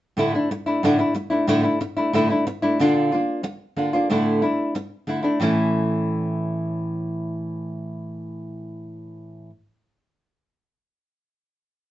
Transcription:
0.17 nylon-string guitar A2 D3 A3 D4 E4
0.35 nylon-string guitar A3 D4 E4
0.51 muted nylon-string guitar stroke
0.66 nylon-string guitar A3 D4 E4
0.83 nylon-string guitar A2 D3 A3 D4 E4
0.99 nylon-string guitar A3 D4 E4
1.14 muted nylon-string guitar stroke
1.30 nylon-string guitar A3 D4 E4
1.47 nylon-string guitar A2 D3 A3 D4 E4
1.63 nylon-string guitar A3 D4 E4
1.81 muted nylon-string guitar stroke
1.97 nylon-string guitar A3 D4 E4
2.13 nylon-string guitar A2 D3 A3 D4 E4
2.30 nylon-string guitar A3 D4 E4
2.47 muted nylon-string guitar stroke
2.62 nylon-string guitar A3 D4 E4
2.79 nylon-string guitar A#2 D3 A#3 D4 F4
3.12 nylon-string guitar A#3 D4 F4
3.43 muted nylon-string guitar stroke
3.77 nylon-string guitar D3 A#3 D4 F4
3.93 nylon-string guitar A#3 D4 F4
4.10 nylon-string guitar A2 D3 A3 D4 E4
4.42 nylon-string guitar A3 D4 E4
4.75 muted nylon-string guitar stroke
5.07 nylon-string guitar D3 A3 D4 E4
5.23 nylon-string guitar A3 D4 E4
5.40 nylon-string guitar A2 E3 A3 C#4 E4

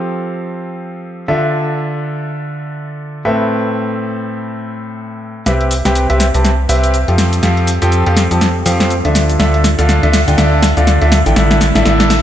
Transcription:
Already playing: grand piano F3 C4 G4 A4 F5
1.28 grand piano D3 D4 F4 A4 E5
3.25 grand piano A2 C4 A4 B4 E5
5.46 analog synth bass C2, grand piano C3 C4 G4 B4 E5, snare, closed hi-hat, shaker
5.61 closed hi-hat
5.71 open hi-hat, shaker
5.85 analog synth bass C2, grand piano C3 C4 G4 B4 G5, snare, closed hi-hat, shaker
5.95 closed hi-hat, shaker
6.10 analog synth bass C2, grand piano C3 C4 G4 B4 E5, closed hi-hat
6.20 snare, open hi-hat, shaker
6.34 analog synth bass C2, grand piano C3 C4 G4 B4 A5, closed hi-hat, shaker
6.45 snare, closed hi-hat, shaker
6.69 analog synth bass C2, grand piano C3 C4 G4 B4 E5, open hi-hat, shaker
6.84 closed hi-hat, shaker
6.94 closed hi-hat, shaker
7.08 analog synth bass F2, grand piano F3 C4 G4 A4 F5, closed hi-hat
7.18 snare, open hi-hat, shaker
7.33 closed hi-hat, shaker
7.43 analog synth bass F2, grand piano F3 C4 G4 A4 F5, snare, closed hi-hat, shaker
7.57 closed hi-hat
7.67 open hi-hat, shaker
7.82 analog synth bass F2, grand piano F3 C4 G4 A4 G5, closed hi-hat, shaker
7.92 closed hi-hat, shaker
8.06 analog synth bass F2, grand piano F3 C4 G4 A4 F5, closed hi-hat
8.17 snare, open hi-hat, shaker
8.31 analog synth bass F2, grand piano F3 C4 G4 A4 A5, closed hi-hat, shaker
8.41 snare, closed hi-hat, shaker
8.66 analog synth bass F2, grand piano F3 C4 G4 A4 F5, open hi-hat, shaker
8.80 snare, closed hi-hat, shaker
8.90 closed hi-hat, shaker
9.05 analog synth bass D2, grand piano D3 D4 F4 A4 E5, closed hi-hat
9.15 snare, open hi-hat, shaker
9.29 closed hi-hat, shaker
9.39 analog synth bass D2, grand piano D3 D4 F4 A4 E5, snare, closed hi-hat, shaker
9.54 closed hi-hat
9.64 snare, open hi-hat, shaker
9.79 analog synth bass D2, grand piano D3 D4 F4 A4 F5, closed hi-hat, shaker
9.89 snare, closed hi-hat, shaker
10.03 analog synth bass D2, grand piano D3 D4 F4 A4 E5, closed hi-hat
10.13 snare, open hi-hat, shaker
10.28 analog synth bass D2, grand piano D3 D4 F4 A4 G5, closed hi-hat, shaker
10.38 analog synth bass D2, grand piano D3 D4 F4 A4 E5, snare, closed hi-hat, shaker
10.62 snare, open hi-hat, shaker
10.77 analog synth bass D2, grand piano D3 D4 F4 A4 F5, closed hi-hat, shaker
10.87 snare, closed hi-hat, shaker
11.02 analog synth bass D2, grand piano D3 D4 F4 A4 E5, closed hi-hat
11.12 snare, open hi-hat, shaker
11.26 analog synth bass A1, grand piano D3 D4 E4 A4 G5, closed hi-hat, shaker
11.36 analog synth bass A1, grand piano D3 D4 E4 A4 E5, snare, closed hi-hat, shaker
11.51 snare, closed hi-hat, shaker
11.61 snare, open hi-hat, shaker
11.75 analog synth bass A1, grand piano D3 D4 E4 A4 E5, snare, closed hi-hat, shaker
11.86 analog synth bass A1, grand piano D3 D4 E4 A4 E5, snare, closed hi-hat, shaker
12.00 snare, closed hi-hat, shaker
12.10 snare, open hi-hat, shaker

